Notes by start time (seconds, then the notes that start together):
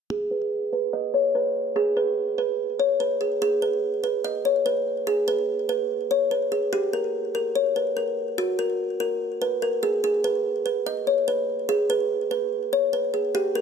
0.10 G#4
0.31 B4
0.73 B4
0.93 D#5
1.14 C#5
1.35 B4
1.76 G#4
1.97 B4
2.38 B4
2.79 C#5
3.00 B4
3.21 G#4
3.42 G#4
3.62 B4
4.04 B4
4.24 D#5
4.45 C#5
4.66 B4
5.07 G#4
5.28 B4
5.69 B4
6.11 C#5
6.31 B4
6.52 G#4
6.73 G4
6.93 A#4
7.35 A#4
7.55 C#5
7.76 B4
7.97 A#4
8.38 F#4
8.59 A#4
9.00 A#4
9.42 B4
9.62 A#4
9.83 G#4
10.04 G#4
10.24 B4
10.66 B4
10.86 D#5
11.07 C#5
11.28 B4
11.69 G#4
11.90 B4
12.31 B4
12.73 C#5
12.93 B4
13.14 G#4
13.35 G4
13.55 A#4